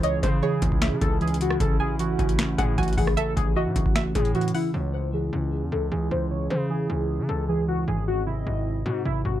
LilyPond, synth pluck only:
\new Staff \with { instrumentName = "Synth pluck" } { \time 4/4 \key cis \minor \tempo 4 = 153 dis''4 cis''4 e''2 | r8 gis''8 r4. fis''8 gis''8 fis''8 | e''4 dis''4 e''4. fis''8 | r1 |
r1 | r1 | }